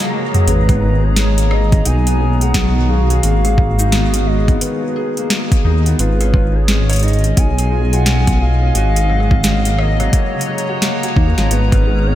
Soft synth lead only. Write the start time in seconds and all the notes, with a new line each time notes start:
0.48 B4
1.03 C#5
1.51 D#5
1.86 G#5
2.41 F#5
2.89 F5
4.27 D#5
4.61 B4
5.99 B4
6.55 C#5
7.03 D#5
7.37 G#5
7.93 F#5
8.41 F5
9.79 D#5
10.13 C#5
11.51 B4
12.07 C#5